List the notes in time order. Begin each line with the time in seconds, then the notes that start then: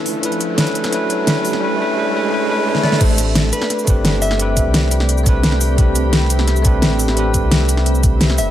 Already playing: A3 C#4 D4 E4 B4 C#5 A5, riser
0.06 open hi-hat
0.20 A3 C#4 D4, closed hi-hat
0.24 E4 B4
0.32 closed hi-hat
0.41 closed hi-hat
0.55 A3 C#4 D4, snare, closed hi-hat
0.59 E4 B4
0.67 closed hi-hat
0.75 closed hi-hat
0.84 snare, closed hi-hat
0.90 A3 C#4 D4, snare, closed hi-hat
0.94 E4 B4
1.10 closed hi-hat
1.24 A3 C#4 D4, snare, closed hi-hat
1.28 E4 B4
1.45 open hi-hat
1.53 snare
1.59 A3 C#4 D4
1.63 E4 B4
1.76 A3 C#4 D4
1.80 E4 B4
1.94 A3 C#4 D4
1.98 E4 B4
2.11 A3 C#4 D4 E4
2.17 B4
2.29 A3 C#4 D4
2.33 E4 B4
2.46 A3 C#4 D4
2.50 E4 B4
2.63 A3 C#4 D4
2.67 E4 B4
2.75 snare
2.81 A3 C#4 D4 D5, snare
2.85 E4 B4
2.92 snare
2.98 A1 A3 C4 D4 G4 C5 D5 B5, kick, closed hi-hat, crash
3.03 A4
3.18 closed hi-hat, cabasa
3.35 snare, closed hi-hat
3.53 B4, closed hi-hat, cabasa
3.62 snare
3.70 snare, closed hi-hat
3.79 cabasa
3.85 G1 A3 C4 D4, kick, closed hi-hat, cabasa
3.89 G4 B4
4.05 snare, closed hi-hat
4.22 E5, open hi-hat, cabasa
4.31 snare
4.37 A3 C4 D4, closed hi-hat
4.41 G4 B4
4.57 kick, closed hi-hat, cabasa
4.66 C2
4.74 snare, closed hi-hat
4.91 closed hi-hat, cabasa
5.00 snare
5.09 closed hi-hat
5.18 cabasa
5.24 A3 C4 D4, kick, closed hi-hat, cabasa
5.28 G4 B4
5.43 snare, closed hi-hat
5.52 snare
5.61 open hi-hat, cabasa
5.75 A3 C4 D4 G4 E5, kick, closed hi-hat
5.81 B4
5.96 closed hi-hat, cabasa
6.04 C2
6.13 snare, closed hi-hat
6.30 closed hi-hat, cabasa
6.39 snare
6.48 snare, closed hi-hat
6.56 cabasa
6.62 A3 C4 D4, kick, closed hi-hat, cabasa
6.66 G4 B4
6.82 A1, snare, closed hi-hat
6.99 open hi-hat, cabasa
7.08 A1, snare
7.14 A3 C4 D4, closed hi-hat
7.18 G4 B4
7.34 kick, closed hi-hat, cabasa
7.43 C2
7.51 snare, closed hi-hat
7.69 closed hi-hat, cabasa
7.77 snare
7.86 closed hi-hat
7.95 cabasa
8.03 kick, closed hi-hat, cabasa
8.21 snare, closed hi-hat
8.30 snare
8.38 E1 E5, open hi-hat, cabasa